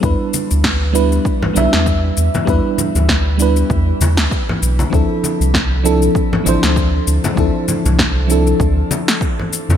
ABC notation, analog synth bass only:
X:1
M:4/4
L:1/16
Q:"Swing 16ths" 1/4=98
K:Ephr
V:1 name="Analog synth bass" clef=bass
E,, z2 D,,4- D,, z2 B,,, E,,3 E,, z | E,, z2 D,,4- D,, E,, z E,, D,, z2 B,,, z | D,, z2 C,,4- C,, z2 A,,, D,,3 D,, z | D,, z2 C,,4- C,, D,, z6 F,, |]